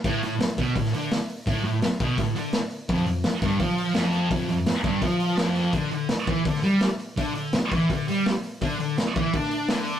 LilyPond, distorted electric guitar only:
\new Staff \with { instrumentName = "Distorted electric guitar" } { \clef bass \time 4/4 \key d \dorian \tempo 4 = 168 a,8 a,8 r8 b,8 a,8 d8 r4 | a,8 a,8 r8 b,8 a,8 d8 r4 | f,8 f,8 r8 g,8 f4 f,4 | f,8 f,8 r8 g,8 f4 f,4 |
d8 d8 r8 e8 d8 g8 r4 | d8 d8 r8 e8 d8 g8 r4 | d8 d8 r8 e8 d'4 d4 | }